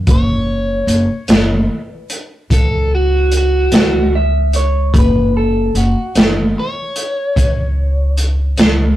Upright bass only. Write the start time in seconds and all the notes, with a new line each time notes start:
0.07 F#1
0.87 F#1
1.29 F#1
2.50 C#2
3.72 C#2
4.94 F#1
5.75 F#1
6.16 F#1
7.37 C#2
8.59 C#2